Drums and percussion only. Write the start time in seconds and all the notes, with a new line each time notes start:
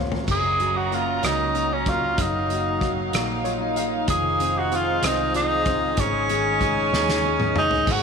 0.12 floor tom
0.28 kick, crash
0.60 closed hi-hat
0.92 closed hi-hat
1.23 cross-stick, closed hi-hat
1.55 closed hi-hat
1.86 kick, closed hi-hat
2.18 kick, closed hi-hat
2.50 closed hi-hat
2.81 kick, closed hi-hat
3.13 cross-stick, closed hi-hat
3.45 closed hi-hat
3.76 closed hi-hat
4.08 kick, closed hi-hat
4.40 closed hi-hat
4.72 closed hi-hat
5.03 cross-stick, closed hi-hat
5.34 closed hi-hat
5.66 kick, closed hi-hat
5.97 kick, closed hi-hat
6.29 closed hi-hat
6.61 kick, closed hi-hat
6.94 snare
7.09 snare
7.40 mid tom
7.56 mid tom
7.71 floor tom
7.87 kick, crash